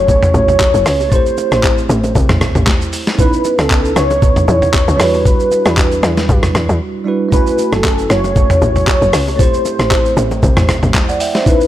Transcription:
Already playing: F#1 A3 C#4 E4 F#4 G#5
0.08 C#5, kick, low conga, shaker
0.23 mid tom, shaker
0.34 A1, low bongo, low conga, shaker
0.48 mid tom, shaker
0.60 kick, clap, high bongo, shaker
0.74 F#1, shaker
0.86 C#2, cross-stick, open hi-hat, shaker
1.00 high bongo, shaker
1.08 A3 C4 E4, kick, low conga, shaker
1.12 G4 C5
1.26 shaker
1.37 low bongo, shaker
1.52 A1, cross-stick, shaker
1.63 kick, clap, high bongo, shaker
1.78 shaker
1.89 A1, low bongo, shaker
2.04 low bongo, shaker
2.15 C2, kick, low conga, shaker
2.29 A1, cross-stick, mid tom, shaker
2.41 cross-stick, low bongo, low conga, shaker
2.55 A1, mid tom, shaker
2.67 kick, snare, clap, high bongo, shaker
2.81 shaker
2.93 open hi-hat, shaker
3.07 snare, high bongo, shaker
3.15 B3 C#4 D#4, kick, low conga, shaker
3.20 E4 B4
3.33 shaker
3.44 low bongo, shaker
3.59 C#2 A4, cross-stick, shaker
3.70 kick, clap, high bongo, shaker
3.85 shaker
3.96 C#2 C#5, cross-stick, low bongo, shaker
4.10 low bongo, shaker
4.22 C#5, kick, low conga, shaker
4.36 mid tom, shaker
4.48 E2, low bongo, low conga, shaker
4.62 mid tom, shaker
4.74 kick, clap, high bongo, shaker
4.88 C#2, shaker
4.96 E2 G3 D4 E4, cross-stick, open hi-hat, shaker
5.01 F#4 B4
5.14 high bongo, shaker
5.25 B4, kick, low conga, shaker
5.40 shaker
5.51 low bongo, shaker
5.65 E2, cross-stick, shaker
5.77 kick, clap, high bongo, shaker
5.91 shaker
6.03 E2, cross-stick, low bongo, shaker
6.17 snare, low bongo, shaker
6.29 G2, kick, low conga, shaker
6.43 cross-stick, mid tom, shaker
6.55 E2, cross-stick, low bongo, low conga, shaker
6.69 E2, shaker
7.05 G3 D4 E4 F#4 B4
7.29 A3 C#4 E4, kick, low conga, shaker
7.33 F#4 B4 G#5
7.47 shaker
7.58 low bongo, shaker
7.72 F#1 A4, cross-stick, shaker
7.84 kick, clap, high bongo, shaker
7.98 shaker
8.10 F#1 C#5, cross-stick, low bongo, shaker
8.24 low bongo, shaker
8.36 C#5, kick, low conga, shaker
8.50 mid tom, shaker
8.62 A1, low bongo, low conga, shaker
8.76 mid tom, shaker
8.87 kick, clap, high bongo, shaker
9.02 F#1, shaker
9.13 C#2, cross-stick, open hi-hat, shaker
9.28 high bongo, shaker
9.36 A3 C4 E4 C5, kick, low conga, shaker
9.41 G4 C5
9.54 shaker
9.65 low bongo, shaker
9.79 A1, cross-stick, shaker
9.91 kick, clap, high bongo, shaker
10.05 shaker
10.17 A1, low bongo, shaker
10.31 low bongo, shaker
10.43 C2, kick, low conga, shaker
10.57 A1, cross-stick, mid tom, shaker
10.69 cross-stick, low bongo, low conga, shaker
10.83 A1, mid tom, shaker
10.94 kick, snare, clap, high bongo, shaker
11.09 D5 F#5, shaker
11.20 E5 G5, open hi-hat, shaker
11.34 C5 E5, snare, high bongo, shaker
11.42 B3 C#4 D#4, kick, low conga, shaker
11.47 E4 B4
11.61 shaker

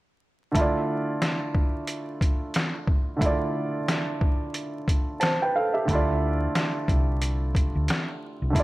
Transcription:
0.52 D3 A3, kick, closed hi-hat
0.56 E4 F4
0.61 D5
1.22 cross-stick, snare, closed hi-hat
1.55 kick
1.87 closed hi-hat
2.21 kick, closed hi-hat
2.54 cross-stick, snare, closed hi-hat
2.88 kick
3.17 D3 A3
3.21 E4 F4, kick, closed hi-hat
3.26 D5
3.88 cross-stick, snare, closed hi-hat
4.21 kick
4.54 closed hi-hat
4.88 kick, closed hi-hat
5.20 C5 A5, cross-stick, snare, closed hi-hat
5.42 B4 G5
5.56 A4 F5
5.74 G4 E5
5.85 D2 D3 A3, kick, closed hi-hat
5.90 E4 F4
5.95 D5
6.55 cross-stick, snare, closed hi-hat
6.88 C2, kick, closed hi-hat
7.22 closed hi-hat
7.55 kick, closed hi-hat
7.75 D2
7.88 cross-stick, snare, closed hi-hat
8.42 C2
8.50 D3 A3
8.55 D2 E4 F4, kick, closed hi-hat
8.60 D5

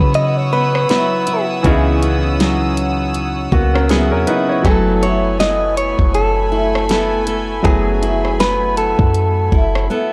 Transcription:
Already playing: C#3 E3 F#3 B3 C#4 D#4 E4 F#4 B4 C#5 F#5 D#6 E6
0.00 C#3
0.14 D#5, closed hi-hat
0.37 C#5
0.53 B3 B4
0.75 cross-stick
0.89 F#3 B3 E4 B4, snare, closed hi-hat
1.27 E4, closed hi-hat
1.63 C#2 C#3 E3 B3 C#4 D#4 E4, kick, closed hi-hat
1.68 G#4
2.03 B3, closed hi-hat
2.40 F#3, snare, closed hi-hat
2.77 closed hi-hat
3.14 closed hi-hat
3.52 C#2 A#3 B3 F#4, kick
3.74 C#4 A#4, cross-stick
3.89 F#3 B3 E4 G#4, snare, closed hi-hat
4.11 E2 C#4 A#4
4.27 D#4 E4 B4, closed hi-hat
4.49 E4 C#5
4.62 F#1 F#3 G#3 A3 B3 E4 A4 G#5 B5, kick, closed hi-hat
4.67 A3 G#5
5.02 E4 C#5, closed hi-hat
5.40 B3 D#5, snare, closed hi-hat
5.77 C#5, closed hi-hat
5.99 F#1, kick
6.14 A4, closed hi-hat
6.52 E4
6.75 cross-stick
6.89 B3 E4 A4, snare, closed hi-hat
7.27 A4, closed hi-hat
7.62 F#1 F#3 A3 B3 E4 G#4, kick, closed hi-hat
7.67 G#5
8.02 E4, closed hi-hat
8.25 cross-stick
8.40 B3 B4, snare, closed hi-hat
8.77 A4, closed hi-hat
8.99 F#2, kick
9.14 closed hi-hat
9.52 F#1 E4, kick
9.75 cross-stick
9.90 B3 E4 A4

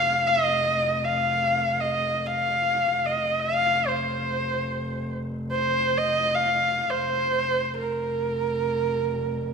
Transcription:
Already playing: F1 F5
0.27 D#5
1.05 F5
1.81 D#5
2.27 F5
2.95 F1
3.06 D#5
3.40 F5
3.87 C5
5.52 C5
5.98 D#5
6.35 F5
6.90 F1 C5
7.79 A#4

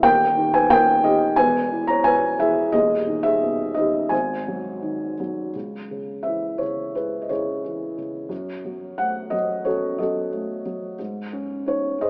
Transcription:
0.03 D#1 D#2 A#4 G5
0.36 D#3
0.54 B4 G#5
0.69 A#2 A#4 G5
1.03 D#3 G4 D#5
1.36 E1 E2 B4 G#5
1.70 E3
1.87 C#5 A#5
2.03 B2 B4 G#5
2.38 E3 G#4 E5
2.72 D#1 D#2 G#4 D#5
3.07 D#3
3.23 G#4 E5
3.42 B2
3.75 D#3 G4 D#5
4.09 G#1 G#2 C5 G#5
4.48 F#3
4.82 D#3
5.20 F#3
5.55 C#2
5.91 C#3
6.23 E3 E5
6.58 C#3 C#5
6.95 G#3 E4 G#4 B4
7.22 D#5
7.29 C#3 E4 G#4 C#5
7.64 E3
7.98 C#3
8.29 F#2
8.65 F#3
8.98 A3 F#5
9.30 F#3 D#5
9.65 C#4 F#4 A4 C#5
9.98 F#3 F#4 A4 D#5
10.32 A3
10.65 F#3
10.99 G#2
11.33 C#4
11.66 D#4 C#5
11.98 C#4 G#4 C5 D#5

